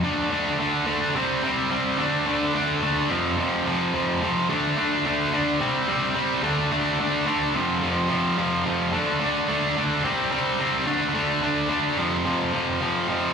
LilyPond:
\new Staff \with { instrumentName = "Distorted electric guitar" } { \clef bass \time 4/4 \key d \dorian \tempo 4 = 108 <d a d'>8 <d a d'>8 <d a d'>8 <d a d'>8 <c g c'>8 <c g c'>8 <c g c'>8 <d a d'>8 | <d a d'>8 <d a d'>8 <d a d'>8 <f, c f>8 <f, c f>8 <f, c f>8 <f, c f>8 <f, c f>8 | <d a d'>8 <d a d'>8 <d a d'>8 <d a d'>8 <c g c'>8 <c g c'>8 <c g c'>8 <d a d'>8 | <d a d'>8 <d a d'>8 <d a d'>8 <f, c f>8 <f, c f>8 <f, c f>8 <f, c f>8 <f, c f>8 |
<d a d'>8 <d a d'>8 <d a d'>8 <d a d'>8 <c g c'>8 <c g c'>8 <c g c'>8 <d a d'>8 | <d a d'>8 <d a d'>8 <d a d'>8 <f, c f>8 <f, c f>8 <f, c f>8 <f, c f>8 <f, c f>8 | }